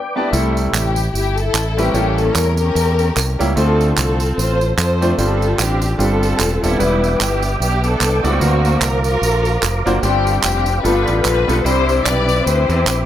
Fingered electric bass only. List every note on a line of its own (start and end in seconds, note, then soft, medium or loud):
0.33 0.67 C2 loud
0.73 1.08 A1 loud
1.14 1.48 G1 medium
1.54 1.88 A1 medium
1.94 2.29 A1 loud
2.35 2.69 E2 loud
2.75 3.10 E2 loud
3.16 3.36 C2 medium
3.40 3.54 C#2 medium
3.57 3.91 D2 loud
3.97 4.32 C2 loud
4.38 4.72 A1 medium
4.78 5.12 F2 loud
5.18 5.53 G1 loud
5.58 5.93 A1 medium
5.99 6.33 G1 loud
6.39 6.59 E1 loud
6.63 6.77 D#1 medium
6.80 7.14 E1 medium
7.20 7.55 G1 loud
7.60 7.95 B1 medium
8.00 8.21 C2 medium
8.24 8.39 C#2 medium
8.41 8.76 D2 loud
8.81 9.16 C2 loud
9.22 9.56 A#1 medium
9.62 9.83 F1 loud
9.86 10.00 F#1 medium
10.03 10.37 G1 loud
10.44 10.78 F1 loud
10.84 11.04 G1 loud
11.08 11.22 A1 medium
11.25 11.45 A#1 medium
11.48 11.63 B1 medium
11.65 11.99 C2 loud
12.06 12.40 B1 loud
12.46 12.66 D2 medium
12.69 12.84 E2 medium
12.86 13.06 A#1 medium